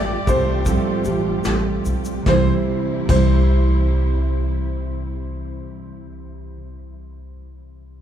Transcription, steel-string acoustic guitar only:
0, 0, Header, 1, 2, 480
1, 0, Start_track
1, 0, Key_signature, 0, "major"
1, 0, Tempo, 790514
1, 1373, Time_signature, 4, 2, 24, 8
1, 1374, Tempo, 827586
1, 4711, End_track
2, 0, Start_track
2, 0, Title_t, "Steel-string acoustic guitar"
2, 0, Program_c, 0, 25
2, 0, Note_on_c, 0, 55, 39
2, 0, Note_on_c, 0, 60, 37
2, 0, Note_on_c, 0, 67, 43
2, 0, Note_on_c, 0, 69, 50
2, 155, Note_off_c, 0, 69, 0
2, 162, Note_on_c, 0, 69, 60
2, 165, Note_off_c, 0, 67, 0
2, 168, Note_on_c, 0, 67, 48
2, 171, Note_off_c, 0, 60, 0
2, 173, Note_on_c, 0, 60, 45
2, 175, Note_off_c, 0, 55, 0
2, 177, Note_on_c, 0, 55, 43
2, 394, Note_off_c, 0, 55, 0
2, 397, Note_off_c, 0, 60, 0
2, 399, Note_off_c, 0, 67, 0
2, 399, Note_off_c, 0, 69, 0
2, 399, Note_on_c, 0, 45, 72
2, 400, Note_on_c, 0, 53, 93
2, 402, Note_on_c, 0, 55, 90
2, 405, Note_on_c, 0, 60, 83
2, 406, Note_on_c, 0, 67, 80
2, 410, Note_on_c, 0, 69, 94
2, 628, Note_off_c, 0, 69, 0
2, 634, Note_off_c, 0, 67, 0
2, 635, Note_on_c, 0, 69, 48
2, 637, Note_off_c, 0, 45, 0
2, 638, Note_off_c, 0, 53, 0
2, 639, Note_off_c, 0, 55, 0
2, 641, Note_off_c, 0, 60, 0
2, 642, Note_on_c, 0, 67, 48
2, 648, Note_on_c, 0, 60, 47
2, 651, Note_on_c, 0, 55, 42
2, 867, Note_off_c, 0, 55, 0
2, 874, Note_off_c, 0, 60, 0
2, 875, Note_on_c, 0, 55, 73
2, 878, Note_off_c, 0, 69, 0
2, 879, Note_off_c, 0, 67, 0
2, 881, Note_on_c, 0, 60, 67
2, 886, Note_on_c, 0, 67, 75
2, 892, Note_on_c, 0, 69, 74
2, 1351, Note_on_c, 0, 48, 73
2, 1371, Note_on_c, 0, 52, 87
2, 1379, Note_off_c, 0, 69, 0
2, 1383, Note_off_c, 0, 55, 0
2, 1385, Note_on_c, 0, 55, 89
2, 1397, Note_off_c, 0, 60, 0
2, 1399, Note_on_c, 0, 60, 82
2, 1407, Note_off_c, 0, 67, 0
2, 1410, Note_on_c, 0, 64, 85
2, 1422, Note_on_c, 0, 72, 83
2, 1831, Note_off_c, 0, 48, 0
2, 1831, Note_off_c, 0, 52, 0
2, 1831, Note_off_c, 0, 55, 0
2, 1831, Note_off_c, 0, 60, 0
2, 1831, Note_off_c, 0, 64, 0
2, 1831, Note_off_c, 0, 72, 0
2, 1833, Note_on_c, 0, 48, 74
2, 1850, Note_on_c, 0, 52, 81
2, 1866, Note_on_c, 0, 55, 75
2, 1879, Note_on_c, 0, 60, 87
2, 1891, Note_on_c, 0, 64, 91
2, 1903, Note_on_c, 0, 72, 88
2, 3863, Note_off_c, 0, 48, 0
2, 3880, Note_off_c, 0, 52, 0
2, 3896, Note_off_c, 0, 55, 0
2, 3909, Note_off_c, 0, 60, 0
2, 3921, Note_off_c, 0, 64, 0
2, 3933, Note_off_c, 0, 72, 0
2, 4711, End_track
0, 0, End_of_file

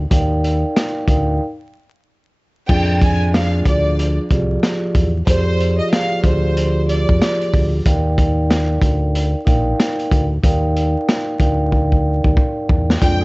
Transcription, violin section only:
0, 0, Header, 1, 2, 480
1, 0, Start_track
1, 0, Tempo, 645161
1, 83, Time_signature, 4, 2, 24, 8
1, 9854, End_track
2, 0, Start_track
2, 0, Title_t, "Violin section"
2, 0, Program_c, 0, 48
2, 2006, Note_on_c, 0, 79, 103
2, 2221, Note_off_c, 0, 79, 0
2, 2248, Note_on_c, 0, 80, 92
2, 2462, Note_off_c, 0, 80, 0
2, 2487, Note_on_c, 0, 77, 87
2, 2701, Note_off_c, 0, 77, 0
2, 2726, Note_on_c, 0, 74, 84
2, 3089, Note_off_c, 0, 74, 0
2, 3923, Note_on_c, 0, 72, 105
2, 4287, Note_off_c, 0, 72, 0
2, 4308, Note_on_c, 0, 75, 78
2, 4393, Note_off_c, 0, 75, 0
2, 4412, Note_on_c, 0, 77, 93
2, 4624, Note_off_c, 0, 77, 0
2, 4645, Note_on_c, 0, 72, 87
2, 5096, Note_off_c, 0, 72, 0
2, 5131, Note_on_c, 0, 74, 88
2, 5344, Note_off_c, 0, 74, 0
2, 5366, Note_on_c, 0, 74, 86
2, 5581, Note_off_c, 0, 74, 0
2, 9684, Note_on_c, 0, 79, 108
2, 9854, Note_off_c, 0, 79, 0
2, 9854, End_track
0, 0, End_of_file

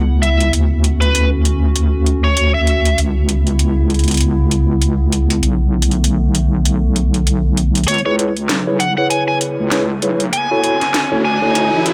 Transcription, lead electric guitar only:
0, 0, Header, 1, 2, 480
1, 0, Start_track
1, 0, Tempo, 612245
1, 417, Time_signature, 4, 2, 24, 8
1, 9357, End_track
2, 0, Start_track
2, 0, Title_t, "Lead electric guitar"
2, 0, Program_c, 0, 29
2, 173, Note_on_c, 0, 76, 84
2, 392, Note_off_c, 0, 76, 0
2, 790, Note_on_c, 0, 71, 83
2, 1002, Note_off_c, 0, 71, 0
2, 1756, Note_on_c, 0, 73, 82
2, 1968, Note_off_c, 0, 73, 0
2, 1994, Note_on_c, 0, 76, 85
2, 2335, Note_off_c, 0, 76, 0
2, 6177, Note_on_c, 0, 73, 83
2, 6266, Note_off_c, 0, 73, 0
2, 6316, Note_on_c, 0, 73, 71
2, 6380, Note_off_c, 0, 73, 0
2, 6898, Note_on_c, 0, 78, 82
2, 6987, Note_off_c, 0, 78, 0
2, 7036, Note_on_c, 0, 78, 71
2, 7100, Note_off_c, 0, 78, 0
2, 7136, Note_on_c, 0, 80, 76
2, 7226, Note_off_c, 0, 80, 0
2, 7275, Note_on_c, 0, 80, 75
2, 7340, Note_off_c, 0, 80, 0
2, 8099, Note_on_c, 0, 80, 81
2, 8778, Note_off_c, 0, 80, 0
2, 8819, Note_on_c, 0, 80, 84
2, 9298, Note_off_c, 0, 80, 0
2, 9357, End_track
0, 0, End_of_file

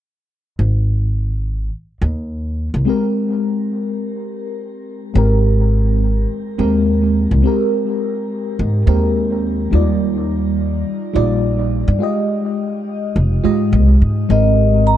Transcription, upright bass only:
0, 0, Header, 1, 2, 480
1, 0, Start_track
1, 0, Tempo, 571429
1, 498, Time_signature, 4, 2, 24, 8
1, 12576, End_track
2, 0, Start_track
2, 0, Title_t, "Upright bass"
2, 0, Program_c, 0, 32
2, 495, Note_on_c, 0, 32, 83
2, 1411, Note_off_c, 0, 32, 0
2, 1693, Note_on_c, 0, 39, 83
2, 2252, Note_off_c, 0, 39, 0
2, 2300, Note_on_c, 0, 36, 82
2, 2387, Note_off_c, 0, 36, 0
2, 4329, Note_on_c, 0, 32, 90
2, 5248, Note_off_c, 0, 32, 0
2, 5534, Note_on_c, 0, 39, 77
2, 6093, Note_off_c, 0, 39, 0
2, 6141, Note_on_c, 0, 36, 81
2, 6227, Note_off_c, 0, 36, 0
2, 7218, Note_on_c, 0, 44, 87
2, 7401, Note_off_c, 0, 44, 0
2, 7451, Note_on_c, 0, 39, 89
2, 8129, Note_off_c, 0, 39, 0
2, 8170, Note_on_c, 0, 39, 87
2, 9089, Note_off_c, 0, 39, 0
2, 9370, Note_on_c, 0, 34, 87
2, 9931, Note_off_c, 0, 34, 0
2, 9976, Note_on_c, 0, 43, 86
2, 10064, Note_off_c, 0, 43, 0
2, 11052, Note_on_c, 0, 29, 82
2, 11239, Note_off_c, 0, 29, 0
2, 11294, Note_on_c, 0, 44, 67
2, 11529, Note_on_c, 0, 36, 89
2, 11542, Note_off_c, 0, 44, 0
2, 11717, Note_off_c, 0, 36, 0
2, 11774, Note_on_c, 0, 44, 77
2, 11960, Note_off_c, 0, 44, 0
2, 12011, Note_on_c, 0, 32, 97
2, 12576, Note_off_c, 0, 32, 0
2, 12576, End_track
0, 0, End_of_file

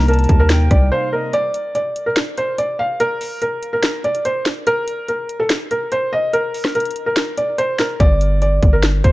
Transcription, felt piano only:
0, 0, Header, 1, 2, 480
1, 0, Start_track
1, 0, Tempo, 416667
1, 1537, Time_signature, 4, 2, 24, 8
1, 10507, End_track
2, 0, Start_track
2, 0, Title_t, "Felt piano"
2, 0, Program_c, 0, 0
2, 96, Note_on_c, 0, 70, 80
2, 434, Note_off_c, 0, 70, 0
2, 455, Note_on_c, 0, 70, 84
2, 794, Note_off_c, 0, 70, 0
2, 817, Note_on_c, 0, 74, 70
2, 1031, Note_off_c, 0, 74, 0
2, 1056, Note_on_c, 0, 72, 89
2, 1270, Note_off_c, 0, 72, 0
2, 1297, Note_on_c, 0, 70, 74
2, 1511, Note_off_c, 0, 70, 0
2, 1538, Note_on_c, 0, 74, 98
2, 1988, Note_off_c, 0, 74, 0
2, 2016, Note_on_c, 0, 74, 76
2, 2355, Note_off_c, 0, 74, 0
2, 2376, Note_on_c, 0, 70, 74
2, 2483, Note_off_c, 0, 70, 0
2, 2738, Note_on_c, 0, 72, 81
2, 2952, Note_off_c, 0, 72, 0
2, 2977, Note_on_c, 0, 74, 80
2, 3191, Note_off_c, 0, 74, 0
2, 3216, Note_on_c, 0, 77, 75
2, 3430, Note_off_c, 0, 77, 0
2, 3457, Note_on_c, 0, 70, 98
2, 3908, Note_off_c, 0, 70, 0
2, 3937, Note_on_c, 0, 70, 83
2, 4275, Note_off_c, 0, 70, 0
2, 4297, Note_on_c, 0, 70, 75
2, 4635, Note_off_c, 0, 70, 0
2, 4657, Note_on_c, 0, 74, 82
2, 4871, Note_off_c, 0, 74, 0
2, 4898, Note_on_c, 0, 72, 83
2, 5111, Note_off_c, 0, 72, 0
2, 5378, Note_on_c, 0, 70, 115
2, 5828, Note_off_c, 0, 70, 0
2, 5858, Note_on_c, 0, 70, 75
2, 6195, Note_off_c, 0, 70, 0
2, 6216, Note_on_c, 0, 69, 81
2, 6323, Note_off_c, 0, 69, 0
2, 6578, Note_on_c, 0, 70, 76
2, 6791, Note_off_c, 0, 70, 0
2, 6819, Note_on_c, 0, 72, 86
2, 7032, Note_off_c, 0, 72, 0
2, 7058, Note_on_c, 0, 75, 89
2, 7271, Note_off_c, 0, 75, 0
2, 7296, Note_on_c, 0, 70, 92
2, 7747, Note_off_c, 0, 70, 0
2, 7777, Note_on_c, 0, 70, 80
2, 8115, Note_off_c, 0, 70, 0
2, 8137, Note_on_c, 0, 70, 81
2, 8475, Note_off_c, 0, 70, 0
2, 8497, Note_on_c, 0, 74, 70
2, 8711, Note_off_c, 0, 74, 0
2, 8736, Note_on_c, 0, 72, 89
2, 8950, Note_off_c, 0, 72, 0
2, 8978, Note_on_c, 0, 70, 74
2, 9191, Note_off_c, 0, 70, 0
2, 9217, Note_on_c, 0, 74, 101
2, 9668, Note_off_c, 0, 74, 0
2, 9698, Note_on_c, 0, 74, 81
2, 10036, Note_off_c, 0, 74, 0
2, 10056, Note_on_c, 0, 70, 71
2, 10163, Note_off_c, 0, 70, 0
2, 10416, Note_on_c, 0, 72, 82
2, 10507, Note_off_c, 0, 72, 0
2, 10507, End_track
0, 0, End_of_file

